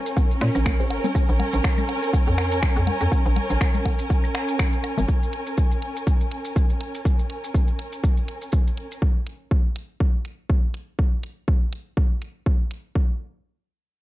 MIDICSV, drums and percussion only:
0, 0, Header, 1, 2, 480
1, 0, Start_track
1, 0, Key_signature, -5, "minor"
1, 0, Tempo, 491803
1, 1122, Time_signature, 4, 2, 24, 8
1, 13680, End_track
2, 0, Start_track
2, 0, Title_t, "Drums"
2, 58, Note_on_c, 9, 70, 83
2, 156, Note_off_c, 9, 70, 0
2, 162, Note_on_c, 9, 77, 85
2, 163, Note_on_c, 9, 36, 126
2, 166, Note_on_c, 9, 70, 68
2, 260, Note_off_c, 9, 77, 0
2, 261, Note_off_c, 9, 36, 0
2, 263, Note_off_c, 9, 70, 0
2, 302, Note_on_c, 9, 70, 44
2, 399, Note_off_c, 9, 70, 0
2, 402, Note_on_c, 9, 77, 47
2, 403, Note_on_c, 9, 26, 61
2, 403, Note_on_c, 9, 42, 91
2, 500, Note_off_c, 9, 77, 0
2, 501, Note_off_c, 9, 26, 0
2, 501, Note_off_c, 9, 42, 0
2, 537, Note_on_c, 9, 75, 64
2, 539, Note_on_c, 9, 70, 88
2, 634, Note_off_c, 9, 75, 0
2, 637, Note_off_c, 9, 70, 0
2, 643, Note_on_c, 9, 26, 98
2, 643, Note_on_c, 9, 36, 127
2, 643, Note_on_c, 9, 77, 80
2, 646, Note_on_c, 9, 70, 69
2, 740, Note_off_c, 9, 36, 0
2, 740, Note_off_c, 9, 77, 0
2, 741, Note_off_c, 9, 26, 0
2, 743, Note_off_c, 9, 70, 0
2, 785, Note_on_c, 9, 70, 40
2, 882, Note_on_c, 9, 77, 83
2, 883, Note_off_c, 9, 70, 0
2, 883, Note_on_c, 9, 42, 90
2, 980, Note_off_c, 9, 77, 0
2, 981, Note_off_c, 9, 42, 0
2, 1017, Note_on_c, 9, 64, 98
2, 1017, Note_on_c, 9, 70, 79
2, 1114, Note_off_c, 9, 64, 0
2, 1115, Note_off_c, 9, 70, 0
2, 1122, Note_on_c, 9, 75, 57
2, 1122, Note_on_c, 9, 77, 45
2, 1123, Note_on_c, 9, 36, 123
2, 1128, Note_on_c, 9, 70, 68
2, 1219, Note_off_c, 9, 75, 0
2, 1219, Note_off_c, 9, 77, 0
2, 1220, Note_off_c, 9, 36, 0
2, 1226, Note_off_c, 9, 70, 0
2, 1259, Note_on_c, 9, 70, 38
2, 1356, Note_off_c, 9, 70, 0
2, 1362, Note_on_c, 9, 64, 83
2, 1362, Note_on_c, 9, 77, 81
2, 1363, Note_on_c, 9, 42, 99
2, 1460, Note_off_c, 9, 64, 0
2, 1460, Note_off_c, 9, 77, 0
2, 1461, Note_off_c, 9, 42, 0
2, 1494, Note_on_c, 9, 70, 89
2, 1591, Note_off_c, 9, 70, 0
2, 1601, Note_on_c, 9, 70, 62
2, 1602, Note_on_c, 9, 77, 85
2, 1603, Note_on_c, 9, 26, 98
2, 1603, Note_on_c, 9, 36, 127
2, 1699, Note_off_c, 9, 70, 0
2, 1700, Note_off_c, 9, 36, 0
2, 1700, Note_off_c, 9, 77, 0
2, 1701, Note_off_c, 9, 26, 0
2, 1737, Note_on_c, 9, 64, 96
2, 1737, Note_on_c, 9, 75, 64
2, 1739, Note_on_c, 9, 70, 40
2, 1835, Note_off_c, 9, 64, 0
2, 1835, Note_off_c, 9, 75, 0
2, 1837, Note_off_c, 9, 70, 0
2, 1842, Note_on_c, 9, 77, 48
2, 1843, Note_on_c, 9, 42, 100
2, 1940, Note_off_c, 9, 77, 0
2, 1941, Note_off_c, 9, 42, 0
2, 1977, Note_on_c, 9, 70, 79
2, 2075, Note_off_c, 9, 70, 0
2, 2082, Note_on_c, 9, 77, 84
2, 2083, Note_on_c, 9, 36, 124
2, 2088, Note_on_c, 9, 70, 76
2, 2180, Note_off_c, 9, 36, 0
2, 2180, Note_off_c, 9, 77, 0
2, 2185, Note_off_c, 9, 70, 0
2, 2220, Note_on_c, 9, 70, 44
2, 2318, Note_off_c, 9, 70, 0
2, 2322, Note_on_c, 9, 75, 64
2, 2322, Note_on_c, 9, 77, 78
2, 2323, Note_on_c, 9, 26, 63
2, 2323, Note_on_c, 9, 42, 93
2, 2420, Note_off_c, 9, 75, 0
2, 2420, Note_off_c, 9, 77, 0
2, 2421, Note_off_c, 9, 26, 0
2, 2421, Note_off_c, 9, 42, 0
2, 2457, Note_on_c, 9, 70, 89
2, 2554, Note_off_c, 9, 70, 0
2, 2561, Note_on_c, 9, 70, 66
2, 2562, Note_on_c, 9, 36, 121
2, 2562, Note_on_c, 9, 77, 46
2, 2563, Note_on_c, 9, 26, 96
2, 2659, Note_off_c, 9, 70, 0
2, 2660, Note_off_c, 9, 36, 0
2, 2660, Note_off_c, 9, 77, 0
2, 2661, Note_off_c, 9, 26, 0
2, 2701, Note_on_c, 9, 70, 41
2, 2799, Note_off_c, 9, 70, 0
2, 2802, Note_on_c, 9, 64, 96
2, 2802, Note_on_c, 9, 77, 85
2, 2803, Note_on_c, 9, 42, 100
2, 2899, Note_off_c, 9, 64, 0
2, 2899, Note_off_c, 9, 77, 0
2, 2900, Note_off_c, 9, 42, 0
2, 2930, Note_on_c, 9, 70, 76
2, 2937, Note_on_c, 9, 75, 61
2, 3028, Note_off_c, 9, 70, 0
2, 3034, Note_off_c, 9, 75, 0
2, 3042, Note_on_c, 9, 36, 111
2, 3043, Note_on_c, 9, 77, 76
2, 3048, Note_on_c, 9, 70, 65
2, 3140, Note_off_c, 9, 36, 0
2, 3140, Note_off_c, 9, 77, 0
2, 3145, Note_off_c, 9, 70, 0
2, 3177, Note_on_c, 9, 70, 41
2, 3274, Note_off_c, 9, 70, 0
2, 3282, Note_on_c, 9, 42, 93
2, 3282, Note_on_c, 9, 64, 78
2, 3282, Note_on_c, 9, 77, 47
2, 3380, Note_off_c, 9, 42, 0
2, 3380, Note_off_c, 9, 64, 0
2, 3380, Note_off_c, 9, 77, 0
2, 3417, Note_on_c, 9, 70, 88
2, 3515, Note_off_c, 9, 70, 0
2, 3522, Note_on_c, 9, 36, 120
2, 3522, Note_on_c, 9, 75, 64
2, 3522, Note_on_c, 9, 77, 80
2, 3523, Note_on_c, 9, 26, 91
2, 3528, Note_on_c, 9, 70, 67
2, 3619, Note_off_c, 9, 75, 0
2, 3619, Note_off_c, 9, 77, 0
2, 3620, Note_off_c, 9, 36, 0
2, 3621, Note_off_c, 9, 26, 0
2, 3626, Note_off_c, 9, 70, 0
2, 3657, Note_on_c, 9, 64, 88
2, 3657, Note_on_c, 9, 70, 41
2, 3754, Note_off_c, 9, 64, 0
2, 3754, Note_off_c, 9, 70, 0
2, 3762, Note_on_c, 9, 36, 62
2, 3762, Note_on_c, 9, 77, 80
2, 3763, Note_on_c, 9, 42, 96
2, 3859, Note_off_c, 9, 77, 0
2, 3860, Note_off_c, 9, 36, 0
2, 3860, Note_off_c, 9, 42, 0
2, 3892, Note_on_c, 9, 70, 80
2, 3990, Note_off_c, 9, 70, 0
2, 4002, Note_on_c, 9, 77, 47
2, 4003, Note_on_c, 9, 36, 115
2, 4007, Note_on_c, 9, 70, 60
2, 4099, Note_off_c, 9, 77, 0
2, 4100, Note_off_c, 9, 36, 0
2, 4105, Note_off_c, 9, 70, 0
2, 4136, Note_on_c, 9, 75, 66
2, 4141, Note_on_c, 9, 70, 41
2, 4234, Note_off_c, 9, 75, 0
2, 4239, Note_off_c, 9, 70, 0
2, 4242, Note_on_c, 9, 77, 81
2, 4243, Note_on_c, 9, 26, 58
2, 4243, Note_on_c, 9, 42, 93
2, 4339, Note_off_c, 9, 77, 0
2, 4341, Note_off_c, 9, 26, 0
2, 4341, Note_off_c, 9, 42, 0
2, 4375, Note_on_c, 9, 70, 84
2, 4473, Note_off_c, 9, 70, 0
2, 4480, Note_on_c, 9, 70, 70
2, 4481, Note_on_c, 9, 77, 83
2, 4483, Note_on_c, 9, 26, 95
2, 4483, Note_on_c, 9, 36, 122
2, 4578, Note_off_c, 9, 70, 0
2, 4579, Note_off_c, 9, 77, 0
2, 4580, Note_off_c, 9, 36, 0
2, 4581, Note_off_c, 9, 26, 0
2, 4613, Note_on_c, 9, 70, 36
2, 4711, Note_off_c, 9, 70, 0
2, 4721, Note_on_c, 9, 75, 65
2, 4721, Note_on_c, 9, 77, 46
2, 4723, Note_on_c, 9, 42, 94
2, 4819, Note_off_c, 9, 75, 0
2, 4819, Note_off_c, 9, 77, 0
2, 4820, Note_off_c, 9, 42, 0
2, 4856, Note_on_c, 9, 64, 88
2, 4860, Note_on_c, 9, 70, 77
2, 4953, Note_off_c, 9, 64, 0
2, 4957, Note_off_c, 9, 70, 0
2, 4963, Note_on_c, 9, 36, 113
2, 4964, Note_on_c, 9, 70, 62
2, 5060, Note_off_c, 9, 36, 0
2, 5061, Note_off_c, 9, 70, 0
2, 5104, Note_on_c, 9, 70, 43
2, 5201, Note_off_c, 9, 70, 0
2, 5203, Note_on_c, 9, 42, 93
2, 5300, Note_off_c, 9, 42, 0
2, 5333, Note_on_c, 9, 70, 74
2, 5431, Note_off_c, 9, 70, 0
2, 5439, Note_on_c, 9, 70, 69
2, 5443, Note_on_c, 9, 36, 119
2, 5537, Note_off_c, 9, 70, 0
2, 5540, Note_off_c, 9, 36, 0
2, 5576, Note_on_c, 9, 70, 43
2, 5674, Note_off_c, 9, 70, 0
2, 5683, Note_on_c, 9, 42, 92
2, 5780, Note_off_c, 9, 42, 0
2, 5820, Note_on_c, 9, 70, 80
2, 5918, Note_off_c, 9, 70, 0
2, 5923, Note_on_c, 9, 36, 120
2, 5923, Note_on_c, 9, 70, 68
2, 6021, Note_off_c, 9, 36, 0
2, 6021, Note_off_c, 9, 70, 0
2, 6058, Note_on_c, 9, 70, 40
2, 6155, Note_off_c, 9, 70, 0
2, 6163, Note_on_c, 9, 42, 92
2, 6261, Note_off_c, 9, 42, 0
2, 6293, Note_on_c, 9, 70, 84
2, 6390, Note_off_c, 9, 70, 0
2, 6403, Note_on_c, 9, 36, 122
2, 6409, Note_on_c, 9, 70, 64
2, 6501, Note_off_c, 9, 36, 0
2, 6506, Note_off_c, 9, 70, 0
2, 6537, Note_on_c, 9, 70, 37
2, 6635, Note_off_c, 9, 70, 0
2, 6643, Note_on_c, 9, 42, 89
2, 6740, Note_off_c, 9, 42, 0
2, 6779, Note_on_c, 9, 70, 81
2, 6877, Note_off_c, 9, 70, 0
2, 6883, Note_on_c, 9, 36, 109
2, 6889, Note_on_c, 9, 70, 66
2, 6981, Note_off_c, 9, 36, 0
2, 6987, Note_off_c, 9, 70, 0
2, 7019, Note_on_c, 9, 70, 39
2, 7116, Note_off_c, 9, 70, 0
2, 7123, Note_on_c, 9, 42, 86
2, 7220, Note_off_c, 9, 42, 0
2, 7261, Note_on_c, 9, 70, 75
2, 7359, Note_off_c, 9, 70, 0
2, 7363, Note_on_c, 9, 36, 114
2, 7369, Note_on_c, 9, 70, 63
2, 7461, Note_off_c, 9, 36, 0
2, 7466, Note_off_c, 9, 70, 0
2, 7493, Note_on_c, 9, 70, 34
2, 7591, Note_off_c, 9, 70, 0
2, 7604, Note_on_c, 9, 42, 88
2, 7701, Note_off_c, 9, 42, 0
2, 7734, Note_on_c, 9, 70, 68
2, 7831, Note_off_c, 9, 70, 0
2, 7843, Note_on_c, 9, 36, 113
2, 7846, Note_on_c, 9, 70, 67
2, 7941, Note_off_c, 9, 36, 0
2, 7943, Note_off_c, 9, 70, 0
2, 7974, Note_on_c, 9, 70, 33
2, 8072, Note_off_c, 9, 70, 0
2, 8084, Note_on_c, 9, 42, 89
2, 8181, Note_off_c, 9, 42, 0
2, 8215, Note_on_c, 9, 70, 70
2, 8312, Note_off_c, 9, 70, 0
2, 8314, Note_on_c, 9, 70, 61
2, 8324, Note_on_c, 9, 36, 111
2, 8411, Note_off_c, 9, 70, 0
2, 8421, Note_off_c, 9, 36, 0
2, 8465, Note_on_c, 9, 70, 39
2, 8563, Note_off_c, 9, 70, 0
2, 8564, Note_on_c, 9, 42, 82
2, 8661, Note_off_c, 9, 42, 0
2, 8702, Note_on_c, 9, 70, 68
2, 8799, Note_off_c, 9, 70, 0
2, 8803, Note_on_c, 9, 36, 108
2, 8901, Note_off_c, 9, 36, 0
2, 9043, Note_on_c, 9, 42, 85
2, 9141, Note_off_c, 9, 42, 0
2, 9284, Note_on_c, 9, 36, 117
2, 9381, Note_off_c, 9, 36, 0
2, 9524, Note_on_c, 9, 42, 85
2, 9621, Note_off_c, 9, 42, 0
2, 9764, Note_on_c, 9, 36, 109
2, 9861, Note_off_c, 9, 36, 0
2, 10004, Note_on_c, 9, 42, 84
2, 10101, Note_off_c, 9, 42, 0
2, 10244, Note_on_c, 9, 36, 115
2, 10341, Note_off_c, 9, 36, 0
2, 10484, Note_on_c, 9, 42, 84
2, 10581, Note_off_c, 9, 42, 0
2, 10724, Note_on_c, 9, 36, 102
2, 10821, Note_off_c, 9, 36, 0
2, 10964, Note_on_c, 9, 42, 85
2, 11062, Note_off_c, 9, 42, 0
2, 11203, Note_on_c, 9, 36, 119
2, 11301, Note_off_c, 9, 36, 0
2, 11444, Note_on_c, 9, 42, 88
2, 11542, Note_off_c, 9, 42, 0
2, 11684, Note_on_c, 9, 36, 110
2, 11781, Note_off_c, 9, 36, 0
2, 11924, Note_on_c, 9, 42, 82
2, 12022, Note_off_c, 9, 42, 0
2, 12163, Note_on_c, 9, 36, 109
2, 12261, Note_off_c, 9, 36, 0
2, 12404, Note_on_c, 9, 42, 89
2, 12502, Note_off_c, 9, 42, 0
2, 12643, Note_on_c, 9, 36, 104
2, 12741, Note_off_c, 9, 36, 0
2, 13680, End_track
0, 0, End_of_file